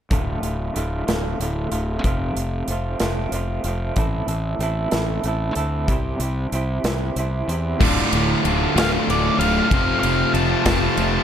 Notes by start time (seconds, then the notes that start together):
0.10 D1 D2 A2 D3 A3 F4, kick, closed hi-hat
0.43 D1 D3 A3 F4, closed hi-hat
0.74 D1 A2 D3 A3 F4, closed hi-hat
1.07 D1 D3 A3 F4, snare, closed hi-hat
1.40 D1 A2 D3 A3 F4, closed hi-hat
1.71 D1 D3 A3 F4, closed hi-hat
2.03 F1 F2 C3 F3 A3 C4 F4, kick, closed hi-hat
2.35 F1 A3 C4 F4, closed hi-hat
2.40 F3
2.68 F1 F3 A3 C4, closed hi-hat
2.72 F4
3.00 F1 F3 A3 C4 F4, snare, closed hi-hat
3.32 F1 F3 A3 C4 F4, closed hi-hat
3.64 F1 A3 C4 F4, closed hi-hat
3.68 F3
3.96 A1 A2 E3 A3 C4 E4 A4, kick, closed hi-hat
4.27 A1 C4 E4 A4, closed hi-hat
4.32 A3
4.59 A1 A3 C4 E4, closed hi-hat
4.63 A4
4.91 A1 A3 C4 E4 A4, snare, closed hi-hat
5.24 A1 A3 C4 E4, closed hi-hat
5.28 A4
5.55 D2 A3 C4 E4 A4, closed hi-hat
5.88 C2 C3 G3 C4 E4 G4 C5, kick, closed hi-hat
6.19 C2 E4 G4 C5, closed hi-hat
6.24 C4
6.52 C2 C4 E4 G4 C5, closed hi-hat
6.84 C2 C4 E4 G4 C5, snare, closed hi-hat
7.16 C2 C4 E4 G4 C5, closed hi-hat
7.48 E2 E4 G4 C5, closed hi-hat
7.53 C4
7.79 D1 D2 A2 D3 A3 F4 A4 D5 F5 D6, kick, crash
8.11 D1 D3 A3 F4, ride
8.44 D1 A2 D3 A3 F4, ride
8.76 D1 D2 A2 D3 A3 F4 F5, snare, ride
9.07 D1 A2 D3 A3 F4 D5, ride
9.39 D1 D3 A3 F4 F5, ride
9.70 F1 F2 C3 F3 A3 C4 F4 C5 C6, kick, ride
10.00 F1 A3 C4 F4 F5, ride
10.04 F3
10.33 F1 F3 A3 A5, ride
10.37 C4 F4
10.66 F1 F2 C3 F3 A3 C4 F4 A5, kick, snare, ride
10.97 F1 F3 A3 C4 F4, ride